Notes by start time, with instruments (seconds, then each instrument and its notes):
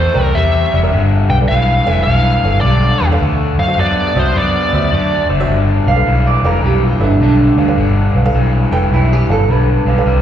Already playing: overdriven electric guitar C3 A3, lead electric guitar C5
0.14 fingered electric bass C2, upright piano A#4 D5 G5
0.24 lead electric guitar A#4
0.35 fingered electric bass E2, overdriven electric guitar C3 G3, lead electric guitar E5
0.71 fingered electric bass F1, overdriven electric guitar C3 G3, upright piano D5 E5
0.83 upright piano A#4 D5 E5
0.92 fingered electric bass G1, overdriven electric guitar G2 D3
1.30 fingered electric bass B1, upright piano B4 F5, lead electric guitar G5
1.40 upright piano A4 B4 D5
1.48 fingered electric bass B1, overdriven electric guitar G2 E3, lead electric guitar F5
1.86 fingered electric bass F1, overdriven electric guitar G2 E3, upright piano A4 B4 F5
1.91 lead electric guitar E5
2.03 fingered electric bass B1, overdriven electric guitar G2 E3, lead electric guitar F5
2.43 fingered electric bass G1, upright piano A4 B4 F5
2.61 fingered electric bass B1, overdriven electric guitar G2 D3, lead electric guitar D5
3.00 fingered electric bass E2, overdriven electric guitar G2 D3, upright piano B4 F5
3.11 upright piano A4 B4 F5
3.20 fingered electric bass D2, overdriven electric guitar D3 A3
3.58 fingered electric bass F#2, upright piano C5 E5, lead electric guitar F5
3.67 upright piano F#4 C5 E5
3.78 fingered electric bass F#2, overdriven electric guitar D3 B3, lead electric guitar D5
4.15 fingered electric bass C2, overdriven electric guitar D3 B3, upright piano F#4 C5 E5
4.19 lead electric guitar C5
4.35 fingered electric bass F#2, overdriven electric guitar D3 B3, lead electric guitar D5
4.73 fingered electric bass D2, upright piano F#4 C5 E5
4.91 fingered electric bass F#2, overdriven electric guitar D3 A3
5.29 fingered electric bass F#1, overdriven electric guitar D3 A3, upright piano C5 E5
5.40 upright piano F#4 C5 E5
5.48 fingered electric bass G1, overdriven electric guitar G2 D3
5.86 fingered electric bass B1, upright piano B4 F5, clean electric guitar F5
5.96 upright piano A4 B4 F5
6.06 fingered electric bass B1, overdriven electric guitar G2 E3
6.27 clean electric guitar D5
6.43 fingered electric bass F1, overdriven electric guitar G2 E3, upright piano A4 B4 F5, clean electric guitar A#4
6.62 fingered electric bass B1, overdriven electric guitar G2 E3, clean electric guitar G4
6.84 clean electric guitar F4
6.99 fingered electric bass G1, upright piano A4 B4 E5
7.04 clean electric guitar D4
7.20 fingered electric bass B1, overdriven electric guitar G2 D3, clean electric guitar D4
7.56 fingered electric bass D2, overdriven electric guitar G2 D3, upright piano B4 F5
7.67 upright piano A4 B4 F5
7.77 fingered electric bass G1, overdriven electric guitar G2 D3
8.15 fingered electric bass B1, upright piano B4 F5
8.25 upright piano A4 B4 F5
8.34 fingered electric bass B1, overdriven electric guitar G2 E3
8.71 fingered electric bass F1, overdriven electric guitar G2 E3, upright piano A4 B4 G5
8.91 fingered electric bass B1, overdriven electric guitar G2 E3, clean electric guitar E4
9.13 clean electric guitar G4
9.28 fingered electric bass G1, upright piano A4 B4 F5, clean electric guitar A4
9.49 fingered electric bass B1, overdriven electric guitar G2 D3, clean electric guitar B4
9.85 fingered electric bass B1, overdriven electric guitar G2 D3, upright piano B4 F5
9.98 upright piano A4 B4 F5
10.06 fingered electric bass C2, overdriven electric guitar C3 G3